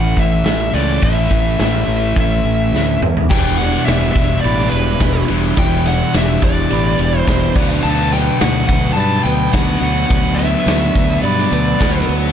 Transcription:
Already playing: A1 A2 E3 A3 C#4 E4 F#5
0.15 A1 A3 C#4 E4, kick
0.19 E5
0.44 A1 E3 A3 C#4 E4 E5, snare, closed hi-hat
0.73 C#2 A2 E3 A3 C#4 E4 D5
0.77 E4
1.01 A1 A2 E3 A3 C#4 E4 E5, kick, closed hi-hat
1.30 A1 A3 C#4 E4, kick
1.58 A1 E3 A3 C#4 E4 E5, snare, closed hi-hat
1.88 A1 A3 C#4 E4
2.16 A1 A2 E3 A3 C#4 E4 E5, kick, closed hi-hat
2.45 A1 A3 C#4 E4
2.72 D2 E3 A3 C#4 E4, snare
3.01 E2 A3 C#4 E4, mid tom
3.17 floor tom
3.29 E1 E2 B2 E3 G3 D4 E4 G4 D5 G5, kick, crash, tambourine
3.58 D4 E4 G4 B4 F#5, snare, ride, tambourine
3.62 E3 G3
3.85 E1 E2 B2 E3 G3 E4 G4 D5 E5, snare, ride, tambourine
3.89 D4 E4
4.12 E1 D4 E5, kick, snare, ride, tambourine
4.16 E3 G3 E4
4.41 E3 D5, ride, tambourine
4.45 A1 G3 D4 E4 G4 B4 D5
4.58 snare
4.70 E1 E4 B4, ride, tambourine
4.74 E3 G3 D4
4.99 E1 E2 B2 E3 G3 D4 E4 G4 D5, kick, snare, ride, tambourine
5.28 E1 E2 B2 E3 G3 D4 E4, ride
5.56 E1 E2 B2 E3 G3 D4 E4 G4 D5 G5, kick, ride, tambourine
5.85 E3 G3 D4 E4 G4 A4 F#5, snare, ride, tambourine
6.12 E1 E2 B2 E3 G3 D4 E4 G4 D5, snare, ride, tambourine
6.16 E5
6.42 E1 E3 G3 D4 E4 D5, kick, ride, tambourine
6.70 A1 E3 G3 D4 E4 G4 B4 D5, ride, tambourine
6.98 E1 E3 G3 D4 E4, ride, tambourine
7.19 C5
7.26 E1 E2 B2 E3 G3 D4 E4 G4 D5, kick, snare, ride, tambourine
7.53 D2 B2 D3 F#3 B3 D4 F#4 B4 D5, kick, crash
7.58 B3
7.83 D2 D3 B3 D4 F#4 A5, tambourine
8.12 B3 D4 F#4 B4 D5 G5, snare, ride, tambourine
8.40 D2 D3 F#3 B3 D4 F#4 B4 E5 F#5, snare, ride, tambourine
8.67 D2 B3 D4 F#4 F#5, kick, snare, ride, tambourine
8.93 G2 F#4 B4 D5 A5
8.97 D3 B3 D4 B4, ride, tambourine
9.23 D2 D4 F#4 G5, ride, tambourine
9.28 B3
9.53 D2 B2 D3 F#3 B3 D4 F#4 B4 D5 F#5, kick, snare, ride, tambourine
9.80 D2 B2 F#3 B3 F#5, ride
9.84 B3 D4 F#4
10.07 D2 F#4 B4 D5 F#5, kick, ride, tambourine
10.11 D3 B3 D4 F#4
10.35 F#4 B4 D5 E5, tambourine
10.39 B3 D4 F#4, snare, ride
10.65 D2 D3 F#3 B3 D4 F#4 B4 D5, snare, ride, tambourine
10.95 D2 B3 D4 F#4, kick, ride, tambourine
11.23 G2 D3 B3 D4 F#4 B4 D5, ride
11.38 snare
11.50 D2 B3 D4 F#4, ride, tambourine
11.78 D2 B2 D3 F#3 B3 D4 F#4 B4 D5, kick, ride, tambourine
11.82 snare
12.06 D2 F#3 B3 D4 F#4, ride, tambourine

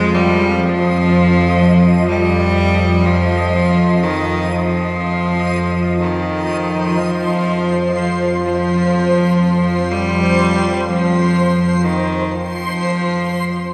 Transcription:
Already playing: F2 F3 G#3 D#5
0.14 G3
0.63 F3
2.09 G3
3.06 F3
4.03 D#3
4.53 F3
6.00 D#3 C5
6.98 F3
7.95 F3
8.46 F3
9.91 G3
10.88 F3
11.85 D#3
12.36 F3

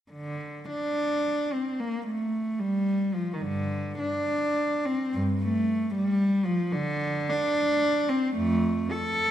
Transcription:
0.11 D3
0.69 D4
1.53 C4
1.80 A#3
2.07 A3
2.60 G3
3.14 F3
3.33 D#3
3.41 G2 D3
3.99 D4
4.86 C4
5.14 G2
5.42 A3
5.95 G3
6.45 F3
6.72 D3
7.30 D4
8.09 C4
8.36 F2 A3
8.91 A4

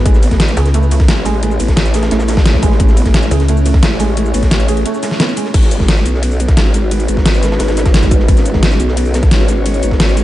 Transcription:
Already playing: B4
0.05 A1 G#3 A3 C#4 E4, kick, closed hi-hat, ride
0.14 snare, shaker
0.23 B3, closed hi-hat, ride, shaker
0.31 kick, snare, closed hi-hat
0.40 snare, closed hi-hat, ride
0.48 snare, closed hi-hat, shaker
0.57 C#2 G#4, closed hi-hat, ride, shaker
0.66 snare, closed hi-hat
0.74 A3, closed hi-hat, ride
0.83 shaker
0.91 A3, closed hi-hat, ride, shaker
1.00 kick, snare
1.08 A1 G#3, snare, closed hi-hat, ride
1.18 ride
1.25 G#3, snare, closed hi-hat, ride, shaker
1.43 G#3, closed hi-hat, ride
1.51 shaker
1.60 A1 B3, closed hi-hat, ride, shaker
1.68 kick, snare, closed hi-hat
1.77 snare, closed hi-hat, ride
1.86 closed hi-hat, shaker
1.94 G#4, snare, closed hi-hat, ride, shaker
2.02 snare, closed hi-hat, ride
2.11 A1 A3, snare, closed hi-hat, ride
2.19 snare, ride, shaker
2.28 A3, snare, closed hi-hat, ride, shaker
2.37 kick, snare, ride
2.46 G#3, snare, closed hi-hat, ride
2.54 kick, snare
2.62 G#3, kick, closed hi-hat, ride, shaker
2.71 snare
2.79 A1 G#3 C#5, kick, closed hi-hat, ride
2.88 snare, shaker
2.97 B3, closed hi-hat, ride, shaker
3.05 kick, snare, closed hi-hat
3.14 snare, closed hi-hat, ride
3.23 snare, closed hi-hat, shaker
3.31 C#2 G#4, closed hi-hat, ride, shaker
3.40 snare, closed hi-hat
3.48 A3, closed hi-hat, ride
3.57 shaker
3.66 A3, closed hi-hat, ride, shaker
3.74 kick, snare
3.83 A1 G#3, snare, closed hi-hat, ride
3.90 ride
4.00 G#3, snare, closed hi-hat, ride, shaker
4.17 G#3, closed hi-hat, ride
4.26 shaker
4.34 A1 B3, closed hi-hat, ride, shaker
4.43 kick, snare, closed hi-hat
4.51 snare, closed hi-hat, ride
4.60 closed hi-hat, shaker
4.68 G#4, closed hi-hat, ride, shaker
4.77 closed hi-hat
4.85 A3, closed hi-hat, ride
4.94 shaker
5.03 G#3, snare, closed hi-hat, ride, shaker
5.11 snare
5.20 B3, snare, closed hi-hat, ride
5.28 snare, shaker
5.36 G#3, closed hi-hat, ride, shaker
5.45 snare
5.54 G#1 G#3 B3 C#4 D#4 B4, kick, closed hi-hat, crash, ride
5.63 snare, closed hi-hat, shaker
5.71 F#4, closed hi-hat, ride, shaker
5.80 kick, snare
5.88 snare, closed hi-hat, ride
5.97 snare, shaker
6.06 B1, closed hi-hat, ride, shaker
6.14 snare
6.22 closed hi-hat, ride
6.30 B4, shaker
6.40 closed hi-hat, ride, shaker
6.48 kick, snare, closed hi-hat
6.57 G#1, snare, closed hi-hat, ride
6.66 ride
6.74 snare, closed hi-hat, ride, shaker
6.91 closed hi-hat, ride
7.00 closed hi-hat, shaker
7.08 G#1, closed hi-hat, ride, shaker
7.17 kick, snare
7.26 snare, closed hi-hat, ride
7.34 shaker
7.43 snare, closed hi-hat, ride, shaker
7.52 snare, ride
7.59 G#1, snare, closed hi-hat, ride
7.68 snare, ride, shaker
7.77 snare, closed hi-hat, ride, shaker
7.86 kick, snare, closed hi-hat, ride
7.94 snare, closed hi-hat, ride
8.03 kick, snare, closed hi-hat, shaker
8.11 kick, closed hi-hat, ride, shaker
8.20 snare
8.28 G#1, kick, closed hi-hat, ride
8.37 snare, closed hi-hat, shaker
8.45 closed hi-hat, ride, shaker
8.54 kick, snare
8.62 snare, closed hi-hat, ride
8.71 snare, shaker
8.80 B1, closed hi-hat, ride, shaker
8.88 C#5, snare
8.97 closed hi-hat, ride
9.06 shaker
9.14 snare, closed hi-hat, ride, shaker
9.23 kick, snare, closed hi-hat
9.31 G#1, snare, closed hi-hat, ride
9.40 snare
9.48 snare, closed hi-hat, ride, shaker
9.66 closed hi-hat, ride
9.74 closed hi-hat, shaker
9.83 G#1, closed hi-hat, ride, shaker
9.91 kick, snare
10.00 snare, closed hi-hat, ride
10.09 shaker
10.17 snare, closed hi-hat, ride, shaker

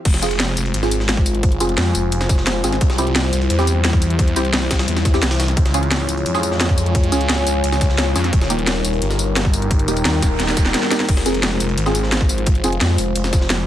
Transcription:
0.05 F1 G#3 F4 C5, kick, closed hi-hat, crash
0.14 snare, closed hi-hat
0.22 C4 F4 G#4, closed hi-hat, tambourine
0.31 closed hi-hat
0.40 snare, closed hi-hat
0.57 F1, closed hi-hat, tambourine
0.66 closed hi-hat
0.74 G#1, closed hi-hat
0.83 C4 F4 G#4, snare, tambourine
0.91 closed hi-hat, tambourine
1.00 G#5, snare
1.09 snare, closed hi-hat
1.17 kick, closed hi-hat
1.26 closed hi-hat, tambourine
1.35 closed hi-hat
1.43 kick, closed hi-hat
1.52 closed hi-hat
1.60 F1 C4 F4 G#4, closed hi-hat, tambourine
1.69 closed hi-hat
1.78 F2, snare, closed hi-hat
1.95 F1, closed hi-hat, tambourine
2.12 F1, closed hi-hat
2.21 snare, tambourine
2.29 kick, snare, closed hi-hat, tambourine
2.38 snare
2.47 snare, closed hi-hat
2.64 G#1 C4 F4 G#4, snare, closed hi-hat, tambourine
2.73 snare, closed hi-hat
2.81 C2 G3 E4, kick, closed hi-hat
2.90 snare, closed hi-hat
2.98 C4 E4 G4, closed hi-hat, tambourine
3.07 closed hi-hat
3.16 snare, closed hi-hat
3.33 C2, closed hi-hat, tambourine
3.41 closed hi-hat
3.50 E2, closed hi-hat
3.59 C4 E4 G4, snare, tambourine
3.67 closed hi-hat, tambourine
3.84 G5, snare, closed hi-hat
3.93 kick, closed hi-hat
4.02 closed hi-hat, tambourine
4.10 closed hi-hat
4.19 kick, closed hi-hat
4.28 closed hi-hat
4.36 C2 C4 E4 G4, closed hi-hat, tambourine
4.45 closed hi-hat
4.53 C2, snare, closed hi-hat
4.71 C2, kick, snare, closed hi-hat, tambourine
4.79 snare, closed hi-hat
4.88 E2, closed hi-hat
4.97 snare, tambourine
5.05 kick, snare, closed hi-hat, tambourine
5.14 C4 E4 G4, snare, tambourine
5.22 C2, snare, closed hi-hat
5.31 snare, closed hi-hat
5.40 snare, closed hi-hat, tambourine
5.48 snare, closed hi-hat
5.57 C#2 G#3 F4 C#5, kick, closed hi-hat
5.66 snare, closed hi-hat
5.74 C#4 F4 G#4, closed hi-hat, tambourine
5.82 C#5 G#5, closed hi-hat
5.91 snare, closed hi-hat
6.09 C#2, closed hi-hat, tambourine
6.17 closed hi-hat
6.26 F2, closed hi-hat
6.35 C#4 F4 G#4, snare, tambourine
6.43 closed hi-hat, tambourine
6.52 snare
6.60 snare, closed hi-hat
6.69 kick, closed hi-hat
6.78 closed hi-hat, tambourine
6.86 closed hi-hat
6.95 kick, closed hi-hat
7.04 closed hi-hat
7.12 C#2 C#4 F4 G#4, closed hi-hat, tambourine
7.21 closed hi-hat
7.29 C#2, snare, closed hi-hat
7.47 C#2, closed hi-hat, tambourine
7.64 C#2, closed hi-hat
7.72 snare, tambourine
7.81 kick, snare, closed hi-hat, tambourine
7.90 snare
7.98 snare, closed hi-hat
8.16 F2 C#4 F4 G#4, snare, closed hi-hat, tambourine
8.24 snare, closed hi-hat
8.33 D#1 G3 D#4 A#4, kick, closed hi-hat
8.41 snare, closed hi-hat
8.50 A#3 D#4 G4, closed hi-hat, tambourine
8.59 closed hi-hat
8.67 snare, closed hi-hat
8.73 A#4
8.85 D#1, closed hi-hat, tambourine
8.92 G5, closed hi-hat
9.02 G1, closed hi-hat
9.10 snare, tambourine
9.19 closed hi-hat, tambourine
9.36 snare, closed hi-hat
9.45 kick, closed hi-hat
9.53 closed hi-hat, tambourine
9.62 closed hi-hat
9.71 kick, closed hi-hat, noise sweep
9.79 closed hi-hat
9.88 D#1 A#3 D#4 G4, closed hi-hat, tambourine
9.97 closed hi-hat, tambourine
10.05 D#2, snare, closed hi-hat
10.22 D#1, kick, snare, closed hi-hat, tambourine
10.40 D#1, snare, closed hi-hat
10.48 snare, tambourine
10.57 D#1, kick, snare, closed hi-hat, tambourine
10.65 snare
10.74 snare, closed hi-hat
10.83 snare
10.91 A#3 D#4 G4, snare, closed hi-hat, tambourine
11.00 snare, closed hi-hat
11.09 F1 G#3 F4 C5, kick, closed hi-hat, crash
11.17 snare, closed hi-hat
11.26 C4 F4 G#4, closed hi-hat, tambourine
11.34 closed hi-hat
11.40 G#5, snare, closed hi-hat
11.45 C5
11.60 F1, closed hi-hat, tambourine
11.69 closed hi-hat
11.78 G#1, closed hi-hat
11.86 C4 F4 G#4, snare, tambourine
11.95 closed hi-hat, tambourine
12.03 snare
12.12 snare, closed hi-hat
12.21 kick, closed hi-hat
12.29 closed hi-hat, tambourine
12.38 closed hi-hat
12.47 kick, closed hi-hat
12.55 closed hi-hat
12.64 F1 C4 F4 G#4, closed hi-hat, tambourine
12.72 closed hi-hat
12.81 F2, snare, closed hi-hat
12.98 F1, closed hi-hat, open hi-hat, tambourine
13.16 F1, closed hi-hat
13.24 snare, tambourine
13.33 kick, snare, closed hi-hat, tambourine
13.41 snare
13.50 snare, closed hi-hat

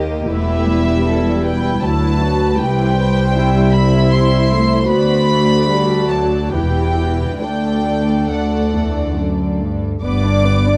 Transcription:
Already playing: D#2 A#3 G4 D#5
0.31 E1 E2 A3 E4 G4 B4 E5
0.70 G3
1.06 E4 A4
1.43 B4 G5
1.82 D2 F#3 E4 B4 A5
2.21 F#4
2.59 C2 E3 G4 C5 G5
2.97 G3
3.36 E4 E5
3.73 E4 B5
4.13 G3 C5 C6
4.51 A3
4.89 D2 B3 F#4 D5 B5
5.28 A3
5.68 G3 A4
6.11 F#3 A5
6.53 E1 E2 E3 G4 B4 G5
7.40 D2 A3 D4 A4 D5 G5
8.31 D2 F#5
8.75 E2
9.18 F#2
9.61 G2
10.02 G1 G2 B3 B4 D5 D6
10.25 D4 D5
10.46 B3 B4
10.67 D4 D5

